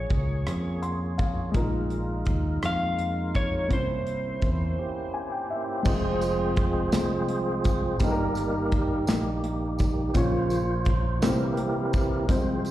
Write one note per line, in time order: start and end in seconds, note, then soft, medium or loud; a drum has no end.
0.00 0.43 A#2 medium
0.00 1.50 A#3 medium
0.00 1.51 A#3 medium
0.00 1.54 C#4 soft
0.00 1.50 G#4 soft
0.00 1.52 G#4 soft
0.00 0.80 C#5 medium
0.00 1.51 C#5 medium
0.00 1.53 C#5 medium
0.10 0.44 C#2 medium
0.10 kick medium
0.10 closed hi-hat soft
0.46 1.51 F2 medium
0.46 cross-stick medium
0.46 closed hi-hat medium
0.82 1.16 C6 medium
0.82 closed hi-hat soft
1.18 1.52 F5 medium
1.18 kick medium
1.18 closed hi-hat soft
1.52 2.23 A#1 medium
1.52 2.58 A#2 medium
1.52 3.65 G#3 medium
1.52 3.67 G#3 medium
1.52 1.61 D4 soft
1.52 3.66 D#4 medium
1.52 3.67 F4 medium
1.52 3.66 A#4 medium
1.52 kick medium
1.52 closed hi-hat medium
1.56 3.68 A#4 medium
1.61 3.70 D#4 medium
1.90 closed hi-hat soft
2.25 2.60 D#2 medium
2.25 kick medium
2.25 closed hi-hat soft
2.63 3.67 F2 medium
2.63 3.38 F5 medium
2.63 cross-stick medium
2.63 closed hi-hat medium
2.99 closed hi-hat soft
3.35 3.69 C#5 medium
3.35 kick medium
3.35 closed hi-hat soft
3.68 4.39 C2 medium
3.68 4.74 C3 soft
3.68 5.81 A#3 medium
3.68 4.80 A#3 medium
3.68 5.81 C#4 medium
3.68 5.82 C#4 soft
3.68 4.80 E4 soft
3.68 5.82 E4 soft
3.68 3.77 A#4 soft
3.68 kick medium
3.68 closed hi-hat medium
3.73 5.83 C5 medium
3.73 5.12 C5 medium
3.73 5.84 C5 medium
4.07 closed hi-hat soft
4.42 4.75 E2 medium
4.42 kick medium
4.42 closed hi-hat soft
4.79 5.84 A#3 medium
4.79 5.83 E4 soft
4.79 5.90 G4 medium
5.14 5.31 G#5 soft
5.32 5.49 G5 soft
5.50 5.84 E5 medium
5.83 6.89 F1 loud
5.83 7.96 F3 medium
5.83 7.95 G#3 medium
5.83 7.96 G#3 soft
5.83 7.96 C4 medium
5.83 7.97 C4 medium
5.83 6.90 F4 medium
5.83 7.97 F4 medium
5.83 6.90 G#4 medium
5.83 6.91 C5 loud
5.83 kick loud
5.83 crash medium
5.83 tambourine soft
5.88 7.98 C5 medium
6.21 closed hi-hat soft
6.21 tambourine soft
6.56 kick medium
6.56 closed hi-hat soft
6.92 8.00 C2 medium
6.92 7.97 F4 medium
6.92 7.97 G#4 medium
6.92 7.93 C5 loud
6.92 snare loud
6.92 closed hi-hat medium
6.92 tambourine medium
7.29 closed hi-hat medium
7.64 kick medium
7.64 closed hi-hat soft
7.64 tambourine soft
7.94 8.01 C5 medium
7.99 9.04 G1 loud
7.99 9.04 G2 medium
7.99 9.05 D#3 medium
7.99 10.10 G3 medium
7.99 9.05 G3 soft
7.99 10.11 A#3 medium
7.99 9.05 D#4 medium
7.99 10.12 D#4 medium
7.99 9.12 A#4 loud
7.99 kick medium
7.99 closed hi-hat medium
7.99 tambourine medium
8.03 9.05 A#3 medium
8.03 9.06 G4 medium
8.03 8.09 A4 medium
8.11 10.16 A#4 medium
8.35 closed hi-hat medium
8.35 tambourine soft
8.72 kick medium
8.72 closed hi-hat soft
9.07 10.11 A#1 medium
9.07 9.80 A#3 medium
9.07 10.12 D#4 medium
9.07 10.18 G4 medium
9.07 snare loud
9.07 closed hi-hat medium
9.07 tambourine medium
9.44 closed hi-hat medium
9.79 10.12 D#3 soft
9.79 10.12 G3 soft
9.79 10.13 A#3 medium
9.79 kick medium
9.79 closed hi-hat soft
9.79 tambourine soft
10.14 11.21 A#1 loud
10.14 11.18 A#2 medium
10.14 10.62 C#3 medium
10.14 10.63 F3 medium
10.14 11.20 A#3 medium
10.14 10.63 A#3 medium
10.14 11.22 C#4 medium
10.14 11.23 F4 medium
10.14 11.19 F4 medium
10.14 11.25 C5 loud
10.14 11.23 C#5 medium
10.14 kick loud
10.14 closed hi-hat medium
10.14 tambourine soft
10.50 closed hi-hat soft
10.50 tambourine soft
10.85 kick medium
10.85 closed hi-hat soft
11.21 12.25 C2 loud
11.21 12.25 C3 medium
11.21 12.25 E3 medium
11.21 12.26 G3 soft
11.21 12.29 A#3 medium
11.21 12.26 A#3 medium
11.21 12.29 E4 medium
11.21 12.26 E4 medium
11.21 12.30 G4 medium
11.21 12.26 G4 medium
11.21 12.33 A#4 medium
11.21 12.29 C5 medium
11.21 snare loud
11.21 closed hi-hat medium
11.21 tambourine medium
11.57 closed hi-hat medium
11.93 kick medium
11.93 closed hi-hat soft
11.93 tambourine soft
12.28 12.71 C2 medium
12.28 12.71 C3 medium
12.28 12.71 F3 medium
12.28 12.71 G#3 medium
12.28 12.71 C4 medium
12.28 12.71 F4 medium
12.28 12.71 C5 loud
12.28 12.71 C5 medium
12.28 kick loud
12.28 closed hi-hat medium
12.28 tambourine soft
12.65 closed hi-hat soft
12.65 tambourine medium